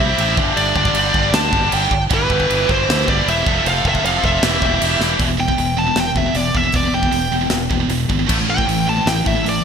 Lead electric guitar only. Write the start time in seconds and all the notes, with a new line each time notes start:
Already playing: E5
0.57 D5
1.34 A5
1.74 G5
2.14 B4
2.71 C5
3.09 D5
3.30 E5
3.68 F5
3.88 E5
4.05 F5
4.25 E5
5.40 G5
5.78 A5
6.00 G5
6.17 E5
6.36 D5
6.57 E5
6.76 D5
6.94 G5
8.50 G5
8.89 A5
9.08 G5
9.27 E5
9.49 D5